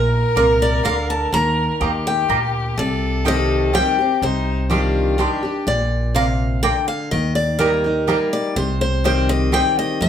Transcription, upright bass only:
Already playing: A#1
0.36 C2
0.85 D2
1.33 D#2
1.81 D#2
2.29 D2
2.77 C2
4.22 C2
5.67 A#1
7.12 D#2
8.56 C2
10.01 F2

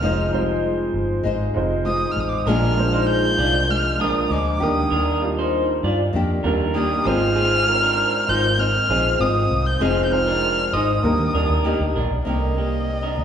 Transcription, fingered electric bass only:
0.02 F1
0.94 G1
1.25 G#1
1.55 F1
2.17 A1
2.47 A#1
3.39 C2
4.00 A#1
4.31 D2
4.61 D#2
4.92 D#2
5.83 G2
6.14 F2
6.44 D#2
7.05 G#1
8.29 G#1
8.89 A#1
9.20 G#1
9.50 C2
9.81 F1
10.73 G#1
11.04 D#2
11.19 D#3
11.34 D#2
11.50 D#2
11.80 D2
11.96 A#1
12.11 B1
12.26 C2
13.18 D2

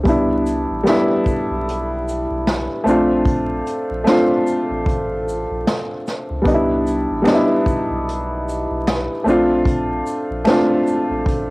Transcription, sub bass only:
0.05 C2
0.70 A1
1.50 B1
2.30 B1
2.86 A#1
3.90 A#1
4.70 A1
5.50 A#1
6.30 C#2
6.46 C2
7.10 A1
7.90 B1
8.70 B1
9.26 A#1
10.30 A#1
11.10 A1

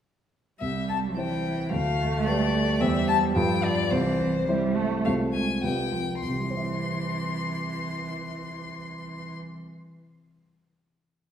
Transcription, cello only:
0.61 G3
1.17 E3
1.72 A3
2.80 G3
3.35 F3
3.91 E3
4.47 G3
4.77 A3
5.35 G#3
5.93 F3
6.22 E3

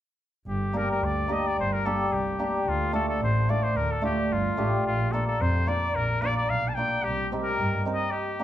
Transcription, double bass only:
0.47 G1
1.02 D2
1.57 G1
2.11 C2
2.65 D2
3.20 A1
3.75 D2
4.30 G1
4.57 A1
4.85 A#1
5.40 F2
5.94 A#1
6.49 B1
7.04 C2
7.58 G2

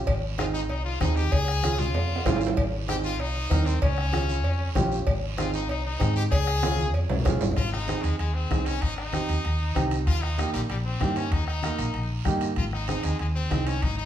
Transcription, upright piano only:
0.38 C4 D#4 G#4
1.00 C4 D#4 G#4
1.63 C#4 F4 G#4
2.25 C#4 F4 G#4
2.88 C4 D#4 G#4
3.50 C4 D#4 A#4
4.12 C#4 F4 G#4
4.75 C#4 F4 G4
5.38 C4 D#4 G#4
5.99 C4 D#4 G#4
6.63 C#4 F4 G#4
7.25 C#4 F4 G#4
7.88 C4 D#4 G#4
8.50 C4 D#4 G#4
9.13 C4 D#4 G4
9.75 C4 D#4 G4
10.38 A#3 D#4 G4
11.01 A#3 D#4 G4
11.64 A#3 D#4 A#4
12.25 A#3 D#4 G4
12.88 C4 D#4 G#4
13.50 C4 D#4 G#4

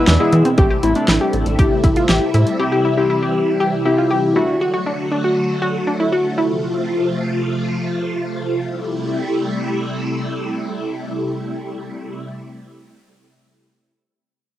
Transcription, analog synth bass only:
0.07 E2
0.33 E3
0.58 A1
0.83 A1
1.08 A1
1.33 A1
1.46 A1
1.59 A1
1.84 A1
2.09 A1
2.34 A2

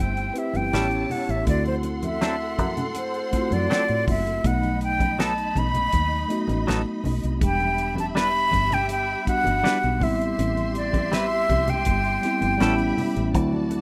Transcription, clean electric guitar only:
0.73 G3 C#4 E4 A4
2.21 F#3 C4 D4 A4
3.70 F#3 C4 D4 A4
5.19 F#3 B3 D#4 A4
6.67 F#3 B3 D#4 A4
8.15 G3 D4 E4 B4
9.64 G3 D4 E4 B4
11.12 G3 C4 E4 B4
12.60 G3 C#4 E4 A4

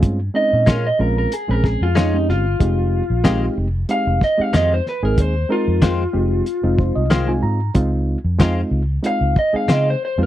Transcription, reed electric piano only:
Already playing: G#3 C4 C#4 F4
0.34 G#3 C4 C#4 D#4
0.99 G#3 C4 C#4 F4
1.48 G#3 C4 C#4 G#4
2.13 G#3 C4 C#4 G4
2.60 G#3 C4 D#4 G4
3.24 G#3 C4 D#4 G4
3.89 G#3 C4 D#4 G4
4.38 G#3 C4 D#4 G4
5.03 G#3 C4 D#4 G#4
5.49 G#3 C4 D#4 A#4
6.13 G#3 C4 D#4 G4
6.63 G#3 C4 D#4 F4
6.78 C5
6.95 D#5
7.11 F5
7.28 G#3 C4 D#4 F4 G#5
7.43 A#5
7.74 G#3 C4 D#4 F4
8.38 G#3 C4 D#4 F4
9.03 G#3 C4 D#4 F4
9.53 G#3 C4 D#4 G#4
10.18 G#3 C4 D#4 F4

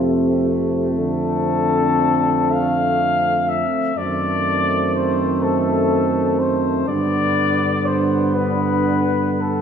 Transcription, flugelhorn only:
0.97 A4
2.52 F5
3.48 E5
3.98 D5
4.95 C5
5.43 A4
6.39 C5
6.88 D5
7.86 C5
8.35 B4
9.41 A4

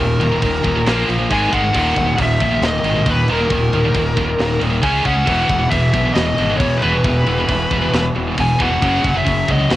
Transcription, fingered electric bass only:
0.00 D#1
0.19 D#1
0.42 D#1
0.65 D#1
0.87 A#1
1.09 A#1
1.31 G#1
1.53 G#1
1.74 D#1
1.96 D#1
2.18 D#1
2.40 A#1
2.61 D#1
2.83 G#1
3.06 D#2
3.28 D#1
3.51 D#1
3.72 D#1
3.95 D#1
4.17 D#1
4.39 D#1
4.61 D#1
4.83 C#2
5.05 C#2
5.28 E1
5.49 E1
5.72 E1
5.94 B1
6.16 E1
6.38 G#1
6.60 E2
6.83 E1
7.04 E1
7.28 E1
7.49 E1
7.71 E1
7.93 E1
8.15 E1
8.38 E1
8.60 E1
8.82 F#1
9.04 F#1
9.26 F#1
9.48 C#2
9.71 F#1

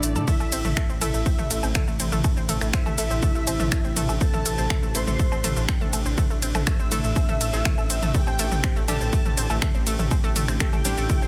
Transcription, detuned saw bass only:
0.03 A1
0.16 A2
0.40 A1
0.52 A1
0.65 A1
0.89 A1
1.01 A1
1.14 A1
1.38 A1
1.51 A1
1.63 A1
1.88 A1
2.00 A1
2.12 A1
2.37 A1
2.49 A1
2.61 A1
2.86 A1
2.98 A1
3.11 A1
3.35 A1
3.47 A1
3.60 A1
3.84 A1
3.96 A1
4.09 A1
4.34 A1
4.46 A1
4.58 A1
4.83 A1
4.95 A1
5.07 A1
5.32 A1
5.44 A1
5.57 A1
5.81 A1
5.93 A1
6.06 A1
6.30 A1
6.42 A1
6.55 A1
6.79 A1
6.92 A1
7.04 A1
7.29 A1
7.41 A1
7.53 A1
7.78 A1
7.90 A1
8.02 A1
8.27 A1
8.39 A1
8.52 A1
8.76 A1
8.88 A1
9.01 A1
9.25 A1
9.38 A1
9.50 A1
9.75 A1
9.87 A1
9.99 A1
10.24 A1
10.36 A1
10.48 A1
10.73 A1
10.85 A1
10.97 A1
11.22 A1

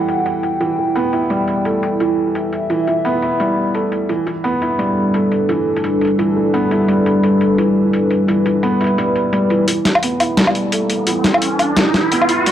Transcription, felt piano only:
Already playing: E3 G3 A3 B3 E4
0.60 E3
0.78 E3
0.95 B3
1.13 E4
1.30 G3
1.65 A3
2.00 E3
2.70 E3
2.88 E3
3.05 B3
3.23 E4
3.40 G3
3.75 A3
4.09 E3
4.26 E3
4.44 B3
4.62 E4
4.79 G3
5.14 A3
5.49 E3
6.19 E3
6.37 E3
6.54 B3
6.71 E4
6.88 G3
7.23 A3
7.58 E3
8.28 E3
8.46 E3
8.63 B3
8.81 E4
8.98 G3
9.33 G3
9.51 E3
9.68 E3
9.85 E3
10.03 B3
10.20 E4
10.38 G3
10.72 A3
11.07 E3
11.77 E3
11.94 E3
12.12 B3
12.29 E4
12.47 G3

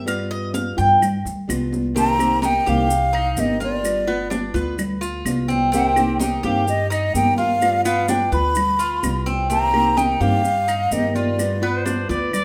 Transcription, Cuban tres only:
0.08 F5
0.31 D#5
0.54 F5
0.78 G5
1.96 C4
2.43 D#4
2.66 G4
3.13 D#4
3.60 F4
4.07 B3
4.30 D4
4.54 B4
5.01 F4
5.48 C4
5.72 C4
6.19 D#4
6.43 G4
6.90 D#4
7.38 F4
7.85 B3
8.08 D4
8.32 B4
8.79 F4
9.26 C4
9.50 C4
9.97 D#4
10.21 G4
10.68 D#4
11.15 F4
11.63 B3
11.85 D4
12.09 B4

